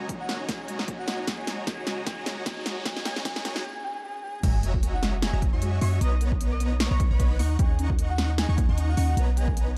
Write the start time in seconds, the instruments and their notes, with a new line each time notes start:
Already playing: analog synth pad B2 A#3 C#4, supersaw synth F#4 C#5 D#5 G#5 A#5, riser
0.09 synth arpeggio sound A#3, kick, closed hi-hat
0.20 synth arpeggio sound F#4, digital synth lead F#5
0.29 synth arpeggio sound A#3, snare, closed hi-hat
0.40 synth arpeggio sound D#4
0.48 synth arpeggio sound A#3, supersaw synth F#4 C#5 D#5 G#5 A#5, digital synth lead G#5, kick, snare, closed hi-hat
0.60 synth arpeggio sound D#4
0.68 synth arpeggio sound G#3, closed hi-hat
0.79 snare
0.88 synth arpeggio sound A#3, kick, closed hi-hat
0.99 synth arpeggio sound F#4, digital synth lead F#5
1.08 analog synth pad D#2 C#3 F#4, synth arpeggio sound A#3, snare, closed hi-hat
1.19 synth arpeggio sound D#4
1.27 synth arpeggio sound A#3, supersaw synth F#4 C#5 D#5 G#5 A#5, digital synth lead G#5, kick, snare, closed hi-hat
1.39 synth arpeggio sound D#4
1.47 synth arpeggio sound G#3, snare, closed hi-hat
1.67 synth arpeggio sound A#3, supersaw synth F#4 C#5 D#5 G#5 A#5, digital synth lead G#5, kick, snare, closed hi-hat
1.78 synth arpeggio sound D#4
1.87 synth arpeggio sound G#3, snare, closed hi-hat
2.06 synth arpeggio sound A#3, supersaw synth F#4 C#5 D#5 G#5 A#5, digital synth lead G#5, kick, snare, closed hi-hat
2.17 synth arpeggio sound D#4
2.26 synth arpeggio sound G#3, snare, closed hi-hat
2.46 synth arpeggio sound A#3, supersaw synth F#4 C#5 D#5 G#5 A#5, digital synth lead G#5, kick, snare, closed hi-hat
2.57 synth arpeggio sound D#4
2.66 synth arpeggio sound G#3, snare, closed hi-hat
2.85 analog synth pad B2 A#3 C#4 D#4, synth arpeggio sound A#3, supersaw synth F#4 C#5 D#5 G#5, digital synth lead G#5, kick, snare, closed hi-hat
2.96 synth arpeggio sound D#4, snare
3.05 synth arpeggio sound A#3, supersaw synth F#4 C#5 D#5 G#5 A#5, digital synth lead G#5, snare, closed hi-hat
3.16 synth arpeggio sound D#4, snare
3.25 synth arpeggio sound A#3, supersaw synth F#4 C#5 D#5 G#5 A#5, digital synth lead G#5, kick, snare, closed hi-hat
3.36 synth arpeggio sound D#4, snare
3.45 synth arpeggio sound A#3, supersaw synth F#4 C#5 D#5 G#5 A#5, digital synth lead G#5, snare, closed hi-hat
3.55 synth arpeggio sound D#4, snare
3.64 digital synth lead G#5
3.84 digital synth lead G#5
4.04 digital synth lead G#5
4.24 digital synth lead G#5
4.43 808-style bass F#1, synth arpeggio sound G#3, supersaw synth F#4 C#5 D#5 E5 G#5 A#5, digital synth lead G#5, synth pluck A#5, kick, closed hi-hat, crash, sub drop
4.63 synth arpeggio sound A#3, closed hi-hat
4.74 synth arpeggio sound F#4, kick
4.83 synth arpeggio sound A#3, closed hi-hat
4.94 synth arpeggio sound D#4, digital synth lead F#5
5.02 synth arpeggio sound G#3, snare, closed hi-hat
5.22 synth arpeggio sound A#3, digital synth lead G#5, snare, closed hi-hat
5.33 808-style bass F#1, synth arpeggio sound F#4, supersaw synth F#4 C#5 D#5 E5 G#5 A#5, synth pluck A#5
5.42 synth arpeggio sound A#3, kick, closed hi-hat
5.53 808-style bass F#2, synth arpeggio sound D#4, supersaw synth F#4 C#5 D#5 E5 G#5 C#6, synth pluck C#6
5.62 synth arpeggio sound G#3, closed hi-hat
5.81 808-style bass F#2, synth arpeggio sound A#3, supersaw synth F#4 C#5 D#5 E5 G#5 C#6, synth pluck C#6, digital synth lead C#6, open hi-hat
5.92 synth arpeggio sound F#4
6.01 808-style bass B1, synth arpeggio sound B3, supersaw synth B3 B4 C#5 D#5 A#5, synth pluck A#5, digital synth lead D#6, closed hi-hat
6.12 synth arpeggio sound D#4
6.21 synth arpeggio sound A#3, closed hi-hat
6.32 kick
6.41 synth arpeggio sound B3, closed hi-hat
6.51 synth arpeggio sound A#4, digital synth lead D#6
6.60 synth arpeggio sound B3, closed hi-hat
6.71 synth arpeggio sound D#4
6.80 synth arpeggio sound A#3, digital synth lead C#6, snare, closed hi-hat
6.91 808-style bass B1, supersaw synth B3 B4 C#5 D#5 A#5, synth pluck A#5
7.00 synth arpeggio sound B3, kick, closed hi-hat
7.11 808-style bass B1, supersaw synth B3 B4 C#5 D#5 B5, synth arpeggio sound A#4, synth pluck B5
7.20 synth arpeggio sound B3, kick, closed hi-hat
7.30 synth arpeggio sound D#4
7.39 808-style bass D#2, synth arpeggio sound A#3, supersaw synth D#4 D#5 F#5 A#5 C#6, synth pluck C#6, open hi-hat
7.59 808-style bass D#2, synth arpeggio sound C#4, supersaw synth D#4 D#5 F#5 A#5 C#6, digital synth lead G#5, synth pluck C#6, kick, closed hi-hat
7.70 synth arpeggio sound C#5
7.79 synth arpeggio sound C#4, closed hi-hat
7.90 synth arpeggio sound F#4, kick
7.99 synth arpeggio sound A#3, closed hi-hat
8.10 digital synth lead F#5
8.18 synth arpeggio sound C#4, snare, closed hi-hat
8.29 synth arpeggio sound C#5
8.38 synth arpeggio sound C#4, digital synth lead G#5, snare, closed hi-hat
8.49 808-style bass D#2, supersaw synth D#4 D#5 F#5 A#5 C#6, synth arpeggio sound F#4, synth pluck C#6
8.58 synth arpeggio sound A#3, kick, closed hi-hat
8.69 808-style bass D#2, supersaw synth D#4 D#5 F#5 A#5 C#6, synth pluck C#6
8.78 synth arpeggio sound C#4, closed hi-hat
8.88 synth arpeggio sound C#5, digital synth lead F#5
8.97 808-style bass D#2, synth arpeggio sound C#4, supersaw synth D#4 D#5 F#5 A#5 C#6, synth pluck C#6, open hi-hat
9.17 808-style bass B1, synth arpeggio sound A#3, supersaw synth B3 B4 C#5 D#5 A#5, synth pluck A#5, closed hi-hat
9.37 synth arpeggio sound B3, digital synth lead G#5, closed hi-hat
9.48 synth arpeggio sound A#4, kick
9.57 synth arpeggio sound B3, closed hi-hat
9.67 synth arpeggio sound D#4